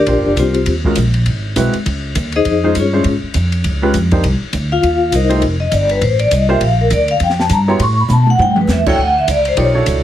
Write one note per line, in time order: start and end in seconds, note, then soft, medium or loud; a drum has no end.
0.00 0.36 D4 medium
0.00 0.36 G4 medium
0.00 0.36 A#4 medium
0.00 0.36 D5 medium
0.06 0.17 A#1 medium
0.06 0.51 A#3 medium
0.06 0.52 D4 medium
0.06 0.52 F4 medium
0.06 0.52 G4 soft
0.06 0.52 C5 medium
0.06 kick soft
0.06 ride medium
0.17 0.25 G1 medium
0.26 0.36 F1 medium
0.36 0.66 C2 medium
0.36 0.66 C4 medium
0.36 0.66 F4 medium
0.36 0.66 G4 medium
0.36 0.66 C5 medium
0.36 kick soft
0.36 hi-hat pedal medium
0.36 ride medium
0.54 ride soft
0.66 0.96 D#2 medium
0.66 kick soft
0.66 ride medium
0.84 0.96 G#3 medium
0.84 0.96 C#4 medium
0.84 0.96 F4 medium
0.84 0.96 F#4 medium
0.84 0.96 A#4 medium
0.84 kick medium
0.95 1.26 A#1 medium
0.95 kick soft
0.95 hi-hat pedal medium
0.95 ride medium
1.14 ride soft
1.26 1.55 G#1 medium
1.26 kick soft
1.26 ride medium
1.56 1.73 B1 medium
1.56 1.72 G#3 medium
1.56 1.72 C4 medium
1.56 1.72 E4 medium
1.56 1.73 F#4 medium
1.56 1.73 B4 medium
1.56 kick soft
1.56 hi-hat pedal medium
1.56 ride medium
1.73 muted upright bass stroke soft
1.73 ride soft
1.86 2.15 C#2 medium
1.86 kick soft
1.86 ride medium
2.15 2.44 D#2 medium
2.15 kick soft
2.15 hi-hat pedal soft
2.15 ride medium
2.32 2.74 G#4 medium
2.32 2.74 C5 medium
2.32 2.74 D#5 medium
2.32 ride soft
2.36 2.74 D#4 medium
2.45 2.74 F2 medium
2.45 kick soft
2.45 ride medium
2.64 2.74 G#3 medium
2.64 2.74 C#4 medium
2.64 2.74 D#4 medium
2.64 2.75 F4 medium
2.64 2.75 C5 medium
2.75 3.04 G2 medium
2.75 kick soft
2.75 hi-hat pedal medium
2.75 ride medium
2.79 3.05 C#4 medium
2.79 3.05 F4 medium
2.79 3.05 G#4 medium
2.79 3.05 C#5 medium
2.93 3.04 G#3 medium
2.93 3.04 D4 medium
2.93 3.04 E4 medium
2.93 3.04 F4 medium
2.93 3.04 C5 medium
3.04 3.21 G#2 medium
3.04 kick soft
3.04 ride medium
3.22 muted upright bass stroke soft
3.34 3.64 F2 medium
3.34 kick soft
3.34 hi-hat pedal medium
3.34 ride medium
3.52 ride soft
3.64 3.93 C#2 medium
3.64 kick soft
3.64 ride medium
3.82 3.93 G#3 medium
3.82 3.93 C#4 medium
3.82 3.94 F4 medium
3.82 3.94 G4 medium
3.82 3.94 B4 medium
3.94 4.23 F2 medium
3.94 kick soft
3.94 hi-hat pedal medium
3.94 ride medium
4.11 4.23 A#3 medium
4.11 4.23 D4 medium
4.11 4.23 D#4 medium
4.11 4.23 G4 medium
4.11 4.24 C5 medium
4.11 kick medium
4.11 ride soft
4.24 4.40 C2 medium
4.24 kick soft
4.24 ride medium
4.41 muted upright bass stroke soft
4.53 4.82 D2 medium
4.53 kick soft
4.53 hi-hat pedal medium
4.53 ride medium
4.72 5.11 F4 medium
4.72 5.11 F5 loud
4.83 5.11 D#2 medium
4.83 kick soft
4.83 ride medium
5.12 5.41 C2 medium
5.12 5.42 D#4 medium
5.12 5.42 A#4 medium
5.12 5.42 C5 medium
5.12 5.42 D#5 medium
5.12 kick soft
5.12 hi-hat pedal medium
5.12 ride medium
5.29 5.41 A3 medium
5.29 5.41 D#4 medium
5.29 5.41 F4 medium
5.29 5.41 G4 medium
5.29 5.41 C5 medium
5.29 ride soft
5.42 5.71 F1 medium
5.42 kick soft
5.42 ride medium
5.60 5.72 D#5 medium
5.72 6.01 G1 medium
5.72 5.90 D5 medium
5.72 kick soft
5.72 hi-hat pedal medium
5.72 ride medium
5.89 6.02 B4 medium
5.89 ride soft
6.01 6.31 A1 medium
6.01 6.20 C5 medium
6.01 kick soft
6.01 ride medium
6.19 6.31 D5 medium
6.19 ride soft
6.31 6.60 C2 medium
6.31 6.50 D#5 medium
6.31 kick soft
6.31 hi-hat pedal medium
6.31 ride medium
6.49 6.60 A#3 medium
6.49 6.60 D4 medium
6.49 6.60 F4 medium
6.49 6.61 G4 medium
6.49 6.60 C5 medium
6.49 6.61 E5 medium
6.61 6.90 A#1 medium
6.61 6.80 F5 medium
6.61 kick soft
6.61 ride medium
6.81 6.92 A#4 medium
6.90 7.19 D2 medium
6.90 7.10 D5 medium
6.90 kick soft
6.90 hi-hat pedal medium
6.90 ride medium
7.08 7.22 F5 loud
7.08 ride soft
7.20 7.49 F2 medium
7.20 7.40 G5 medium
7.20 kick soft
7.20 ride medium
7.30 snare soft
7.40 7.51 A5 medium
7.40 snare soft
7.49 7.79 G2 medium
7.49 7.69 A#5 medium
7.49 kick soft
7.49 hi-hat pedal medium
7.49 ride medium
7.68 7.79 B3 medium
7.68 7.79 E4 medium
7.68 7.79 F#4 medium
7.68 7.79 G4 medium
7.68 7.79 C#5 medium
7.68 7.81 C6 medium
7.79 8.08 A2 medium
7.79 7.99 C#6 loud
7.79 kick soft
7.79 ride medium
8.00 8.11 B5 medium
8.08 8.38 B2 loud
8.08 hi-hat pedal medium
8.08 high tom soft
8.13 8.29 A5 medium
8.27 8.41 F#5 loud
8.27 high tom medium
8.38 8.67 G2 medium
8.38 8.58 G5 loud
8.38 high tom medium
8.56 mid tom medium
8.61 8.71 B4 medium
8.67 8.97 E2 medium
8.67 snare medium
8.67 hi-hat pedal medium
8.73 8.88 E5 medium
8.86 8.98 D4 medium
8.86 8.98 E4 medium
8.86 8.98 F#4 medium
8.86 8.98 A4 medium
8.86 8.98 C#5 medium
8.86 9.00 G5 loud
8.86 kick medium
8.86 crash medium
8.98 9.27 D2 medium
8.98 9.17 F#5 medium
9.18 9.29 E5 medium
9.28 9.56 C#2 medium
9.28 9.47 D5 medium
9.28 kick soft
9.28 hi-hat pedal medium
9.28 ride medium
9.45 9.59 C5 medium
9.45 ride soft
9.57 9.86 B1 medium
9.57 9.74 D#4 medium
9.57 9.74 F4 medium
9.57 9.74 G4 medium
9.57 9.74 A#4 medium
9.57 9.70 C#5 medium
9.57 9.74 D5 medium
9.57 kick soft
9.57 ride medium
9.75 10.02 D4 medium
9.75 10.02 E4 medium
9.75 10.02 F#4 medium
9.75 10.02 A4 medium
9.75 10.02 C#5 medium
9.86 10.03 C#2 medium
9.86 kick soft
9.86 hi-hat pedal medium
9.86 ride medium